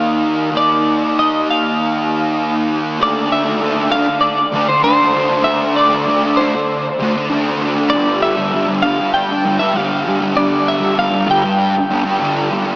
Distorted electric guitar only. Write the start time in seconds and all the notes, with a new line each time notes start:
Already playing: D#3 A#3 D#4
0.52 D#3 A#3
0.56 D#4
2.99 D3 A3 D4
3.45 A3 D4
3.60 D3 A3 D4
3.74 A3 D4
3.91 D3 A3 D4
4.08 muted distorted electric guitar stroke
4.52 D3 A3 D4
4.69 muted distorted electric guitar stroke
4.83 D3 A3 D4
5.14 D3 A3 D4
5.29 A3 D4
5.43 D3 A3 D4
5.89 D4
5.93 A3
6.06 D3 A3 D4
6.23 A3 D4
6.38 D3 A3 D4
6.55 muted distorted electric guitar stroke
6.99 D3 A3 D4
7.16 muted distorted electric guitar stroke
7.29 D3 A3
7.34 D4
7.61 D3 A3 D4
7.75 A3 D4
7.92 G2 D3 G3
8.37 D3 G3
8.51 G2 D3 G3
8.67 D3 G3
8.82 G2 D3 G3
8.99 muted distorted electric guitar stroke
9.45 G2 D3 G3
9.60 muted distorted electric guitar stroke
9.74 G2 D3 G3
10.05 G2 D3 G3
10.20 D3 G3
10.34 G2 D3 G3
10.80 D3 G3
10.95 G2 D3
10.99 G3
11.11 D3 G3
11.26 G2 D3 G3
11.44 muted distorted electric guitar stroke
11.90 G2 D3 G3
12.04 muted distorted electric guitar stroke
12.18 G2 D3 G3
12.50 G2 D3 G3
12.65 D3 G3